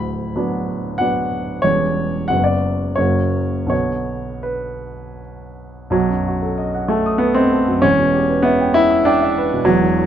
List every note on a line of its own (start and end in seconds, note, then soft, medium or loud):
0.00 1.60 D1 soft
0.00 1.60 D2 medium
0.00 0.99 B5 medium
0.36 0.96 F#3 soft
0.36 0.96 B3 soft
0.36 0.96 D4 soft
0.98 1.60 F#3 soft
0.98 1.60 B3 soft
0.98 1.60 D4 soft
0.98 1.63 F#5 medium
1.62 2.27 E1 soft
1.62 2.27 E2 soft
1.62 2.25 G3 soft
1.62 2.26 C#4 soft
1.62 2.28 C#5 medium
2.28 2.96 F#1 soft
2.28 2.96 F#2 soft
2.28 2.94 F#3 soft
2.28 2.94 B3 soft
2.28 2.95 F#4 soft
2.28 2.45 F#5 medium
2.44 2.97 D5 medium
2.96 3.69 F#1 soft
2.96 3.69 F#2 medium
2.96 3.67 F#3 soft
2.96 3.67 A#3 soft
2.96 3.68 F#4 soft
2.96 3.68 C#5 medium
3.66 5.88 B1 soft
3.66 5.89 D3 soft
3.66 5.89 B3 soft
3.66 5.89 F#4 soft
3.66 4.45 C#5 medium
4.43 5.20 B4 medium
5.90 7.77 B1 medium
5.90 6.89 F#3 medium
6.10 6.36 F#2 soft
6.28 6.53 F#4 soft
6.42 6.68 A4 soft
6.58 6.84 D#5 soft
6.75 7.00 F#5 soft
6.88 7.20 A3 medium
6.88 7.15 A5 soft
7.06 7.31 D#6 soft
7.18 7.35 B3 medium
7.18 7.45 F#5 soft
7.34 7.82 C4 medium
7.34 7.61 D#5 soft
7.52 7.77 A4 soft
7.68 7.84 F#2 soft
7.82 9.62 E1 soft
7.82 9.63 E2 medium
7.82 8.45 C#4 loud
7.99 8.24 B2 soft
8.14 8.39 G4 soft
8.29 8.54 B4 soft
8.43 8.75 B3 medium
8.43 8.70 E5 soft
8.61 8.85 G5 soft
8.74 9.06 E4 loud
8.74 9.00 B5 soft
8.91 9.15 E6 soft
9.05 9.66 D4 medium
9.05 9.31 G5 medium
9.22 9.46 E5 medium
9.38 9.62 B4 medium
9.53 9.67 B2 soft
9.65 10.06 E1 medium
9.65 10.06 E2 medium
9.65 10.06 F#3 medium
9.83 10.06 E3 soft
9.98 10.06 F#4 soft